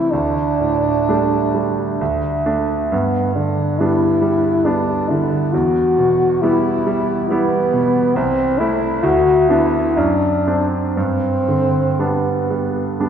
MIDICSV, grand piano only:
0, 0, Header, 1, 2, 480
1, 0, Start_track
1, 0, Key_signature, 1, "major"
1, 0, Tempo, 958466
1, 57, Time_signature, 3, 2, 24, 8
1, 536, Tempo, 921659
1, 1496, Tempo, 874636
1, 4856, Tempo, 934579
1, 5336, Tempo, 1008403
1, 6822, End_track
2, 0, Start_track
2, 0, Title_t, "Grand piano"
2, 0, Program_c, 0, 0
2, 0, Control_c, 0, 64, 127
2, 0, Note_on_c, 0, 48, 35
2, 0, Note_on_c, 0, 52, 35
2, 0, Note_on_c, 0, 57, 30
2, 0, Note_on_c, 0, 60, 35
2, 59, Note_off_c, 0, 48, 0
2, 65, Note_on_c, 0, 38, 36
2, 66, Control_c, 0, 64, 0
2, 69, Note_off_c, 0, 52, 0
2, 69, Note_off_c, 0, 57, 0
2, 71, Note_off_c, 0, 60, 0
2, 171, Control_c, 0, 64, 127
2, 303, Note_on_c, 0, 45, 29
2, 545, Note_on_c, 0, 55, 28
2, 546, Note_on_c, 0, 57, 29
2, 549, Note_on_c, 0, 62, 28
2, 686, Note_off_c, 0, 45, 0
2, 764, Note_off_c, 0, 55, 0
2, 764, Note_off_c, 0, 57, 0
2, 766, Note_off_c, 0, 62, 0
2, 784, Note_on_c, 0, 55, 28
2, 1004, Note_off_c, 0, 38, 0
2, 1022, Note_off_c, 0, 55, 0
2, 1025, Note_on_c, 0, 38, 40
2, 1031, Control_c, 0, 64, 0
2, 1120, Control_c, 0, 64, 127
2, 1259, Note_on_c, 0, 57, 31
2, 1260, Note_on_c, 0, 62, 36
2, 1475, Note_off_c, 0, 57, 0
2, 1476, Note_off_c, 0, 62, 0
2, 1484, Note_off_c, 0, 38, 0
2, 1499, Note_on_c, 0, 43, 36
2, 1507, Control_c, 0, 64, 0
2, 1612, Control_c, 0, 64, 127
2, 1740, Note_on_c, 0, 50, 29
2, 1985, Note_on_c, 0, 55, 31
2, 1986, Note_on_c, 0, 59, 31
2, 1986, Note_on_c, 0, 62, 29
2, 2123, Note_off_c, 0, 50, 0
2, 2197, Note_off_c, 0, 55, 0
2, 2198, Note_off_c, 0, 59, 0
2, 2198, Note_off_c, 0, 62, 0
2, 2211, Note_on_c, 0, 55, 30
2, 2439, Note_off_c, 0, 55, 0
2, 2447, Note_on_c, 0, 55, 33
2, 2448, Note_on_c, 0, 59, 32
2, 2454, Note_on_c, 0, 62, 32
2, 2669, Note_off_c, 0, 55, 0
2, 2669, Note_off_c, 0, 59, 0
2, 2673, Note_off_c, 0, 62, 0
2, 2698, Note_on_c, 0, 50, 34
2, 2918, Note_off_c, 0, 43, 0
2, 2939, Note_on_c, 0, 40, 41
2, 2941, Note_off_c, 0, 50, 0
2, 2949, Control_c, 0, 64, 0
2, 3042, Control_c, 0, 64, 127
2, 3181, Note_on_c, 0, 47, 34
2, 3425, Note_on_c, 0, 55, 38
2, 3426, Note_on_c, 0, 59, 34
2, 3428, Note_on_c, 0, 64, 34
2, 3569, Note_off_c, 0, 47, 0
2, 3644, Note_off_c, 0, 55, 0
2, 3645, Note_off_c, 0, 59, 0
2, 3646, Note_off_c, 0, 64, 0
2, 3666, Note_on_c, 0, 55, 37
2, 3899, Note_off_c, 0, 55, 0
2, 3908, Note_on_c, 0, 55, 37
2, 3913, Note_on_c, 0, 59, 37
2, 3913, Note_on_c, 0, 64, 41
2, 4118, Note_off_c, 0, 55, 0
2, 4120, Note_off_c, 0, 64, 0
2, 4121, Note_off_c, 0, 59, 0
2, 4140, Note_on_c, 0, 47, 37
2, 4351, Note_off_c, 0, 40, 0
2, 4374, Note_off_c, 0, 47, 0
2, 4376, Note_on_c, 0, 36, 46
2, 4382, Control_c, 0, 64, 0
2, 4467, Control_c, 0, 64, 127
2, 4618, Note_on_c, 0, 57, 38
2, 4619, Note_on_c, 0, 64, 45
2, 4836, Note_off_c, 0, 57, 0
2, 4837, Note_off_c, 0, 64, 0
2, 4843, Note_off_c, 0, 36, 0
2, 4852, Note_on_c, 0, 38, 51
2, 4866, Control_c, 0, 64, 0
2, 4960, Control_c, 0, 64, 127
2, 5091, Note_on_c, 0, 59, 36
2, 5094, Note_on_c, 0, 62, 42
2, 5316, Note_off_c, 0, 59, 0
2, 5317, Note_off_c, 0, 62, 0
2, 5320, Note_off_c, 0, 38, 0
2, 5336, Note_on_c, 0, 42, 47
2, 5344, Control_c, 0, 64, 0
2, 5437, Control_c, 0, 64, 127
2, 5576, Note_on_c, 0, 62, 38
2, 5577, Note_on_c, 0, 60, 36
2, 5796, Note_off_c, 0, 62, 0
2, 5797, Note_off_c, 0, 60, 0
2, 5799, Note_off_c, 0, 42, 0
2, 5812, Note_on_c, 0, 43, 39
2, 5821, Control_c, 0, 64, 0
2, 5901, Control_c, 0, 64, 127
2, 6056, Note_on_c, 0, 50, 29
2, 6299, Note_on_c, 0, 55, 26
2, 6300, Note_on_c, 0, 59, 30
2, 6303, Note_on_c, 0, 62, 31
2, 6445, Note_off_c, 0, 50, 0
2, 6521, Note_off_c, 0, 55, 0
2, 6522, Note_off_c, 0, 59, 0
2, 6523, Note_off_c, 0, 62, 0
2, 6542, Note_on_c, 0, 55, 28
2, 6771, Note_off_c, 0, 55, 0
2, 6778, Note_on_c, 0, 55, 28
2, 6780, Note_on_c, 0, 59, 29
2, 6780, Note_on_c, 0, 62, 30
2, 6822, Note_off_c, 0, 43, 0
2, 6822, Note_off_c, 0, 55, 0
2, 6822, Note_off_c, 0, 59, 0
2, 6822, Note_off_c, 0, 62, 0
2, 6822, End_track
0, 0, End_of_file